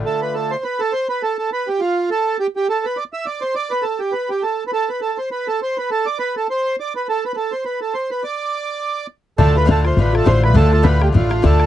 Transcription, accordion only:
X:1
M:4/4
L:1/16
Q:"Swing" 1/4=206
K:Ddor
V:1 name="Accordion"
A2 B2 A2 c2 B2 A2 c2 B2 | A2 A2 B2 G2 F4 A4 | G2 G2 A2 B2 d2 e2 d2 c2 | d2 B2 A2 G2 B2 G2 A3 z/2 B/2 |
A2 B2 A2 c2 B2 A2 c2 B2 | A2 d2 B2 A2 c4 d2 B2 | A2 B3/2 B/2 A2 c2 B2 A2 c2 B2 | d12 z4 |
A2 B2 A2 c2 B2 A2 c2 B2 | A2 A2 B2 G2 F4 A4 |]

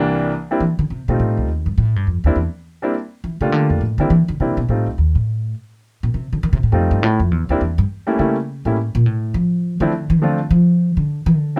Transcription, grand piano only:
X:1
M:4/4
L:1/8
Q:"Swing" 1/4=206
K:F
V:1 name="Grand piano"
[C,,E,G,B,D]2 z [G,B,CDE] z3 [G,A,C_EF]- | [G,A,C_EF]2 z4 z [G,B,CD=E] | z3 [G,B,CDE] z3 [G,A,B,DF]- | [G,A,B,DF]2 z [G,B,CDE] z2 [G,B,CDE] z |
[G,A,C_EF] z6 z | z6 [G,A,C_EF]2 | z3 [G,B,CDE] z3 [G,A,B,_DE] | [G,A,B,^CE] z2 [G,A,B,CE] z4 |
z3 [F,A,CDE] z2 [F,A,CDF] z | z6 z G, |]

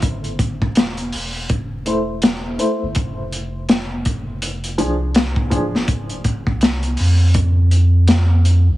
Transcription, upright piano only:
X:1
M:4/4
L:1/8
Q:"Swing 16ths" 1/4=82
K:Flyd
V:1 name="Upright piano"
z4 z [A,Ec] z [A,Ec] | z4 z [F,D_A] z [F,DA] | z8 |]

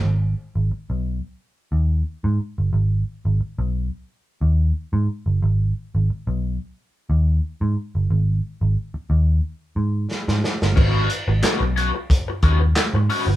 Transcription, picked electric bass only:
X:1
M:4/4
L:1/16
Q:1/4=90
K:G#m
V:1 name="Picked electric bass" clef=bass
G,,,2 z G,,, z B,,,2 z3 D,,2 z G,, z =G,,, | G,,,2 z G,,, z B,,,2 z3 D,,2 z G,, z =G,,, | G,,,2 z G,,, z B,,,2 z3 D,,2 z G,, z =G,,, | G,,,2 z G,,, z2 D,,2 z2 G,,2 z G,, z =G,,, |
G,,,2 z G,,, z B,,,2 z3 D,,2 z G,, z =G,,, |]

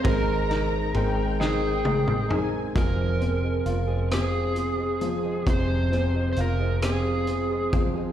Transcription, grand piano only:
X:1
M:6/8
L:1/8
Q:3/8=44
K:Fm
V:1 name="Grand piano"
A, E A, E A, E | F, C F C2 F, | C, C F C2 F, |]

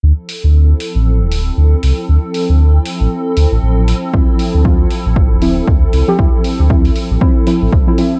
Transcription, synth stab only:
X:1
M:4/4
L:1/16
Q:"Swing 16ths" 1/4=117
K:Dm
V:1 name="Synth stab"
z16 | z16 | [F,CE]4 [F,CF] z4 z [F,CE]2 z3 [F,CG] | [F,E]4 [F,CE] z3 [F,CE] z [F,CE] z2 [F,CE] [F,CE] z |]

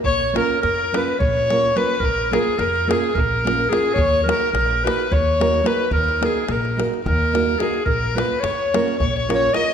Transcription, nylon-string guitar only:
X:1
M:7/8
L:1/8
Q:1/4=108
K:Bbphr
V:1 name="Nylon-string guitar"
z [B,DFB] z [B,DFB] z [B,DFB] [B,DFB] | z [B,DFB] z [B,DFB] z [B,DFB] [B,DFB] | z [B,EGB] z [B,EGB] z [B,EGB] [B,EGB] | z [B,EGB] z [B,EGB] z [B,EGB] [B,EGB] |
z [B,DFB] z [B,DFB] z [B,DFB] [B,DFB] |]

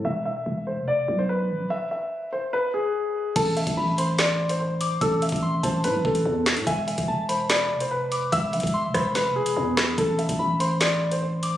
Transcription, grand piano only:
X:1
M:4/4
L:1/16
Q:1/4=145
K:Am
V:1 name="Grand piano"
e2 e4 c2 d3 c B4 | e2 e4 c2 B2 ^G6 | A2 e4 c2 d3 c c4 | A2 e4 c2 B2 A6 |
e2 e4 c2 d3 c B4 | e2 e4 c2 B2 ^G6 | A2 e4 c2 d3 c c4 |]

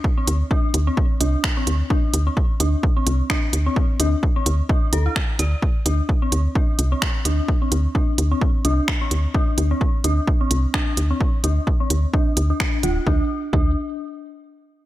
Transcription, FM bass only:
X:1
M:4/4
L:1/8
Q:"Swing 16ths" 1/4=129
K:Cmix
V:1 name="FM bass" clef=bass
z D,, z D,, z C,, z D,, | z D,, z D,, z C,, z D,, | z D,, z D,, z D,, z D,, | z D,, z D,, z C,, z D,, |
z D,, z D,, z C,, z D,, | z D,, z D,, z C,, z D,, | z D,, z D,, z D,, z D,,, | D,, z D,, z4 z |]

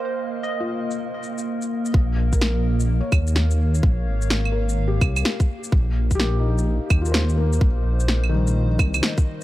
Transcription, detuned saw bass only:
X:1
M:4/4
L:1/8
Q:"Swing 16ths" 1/4=127
K:Bbdor
V:1 name="Detuned saw bass" clef=bass
z8 | B,,,4 z E,,3 | B,,, A,,,4 C,, z2 | B,,,4 z E,,3 |
B,,, B,,,4 C,, z2 |]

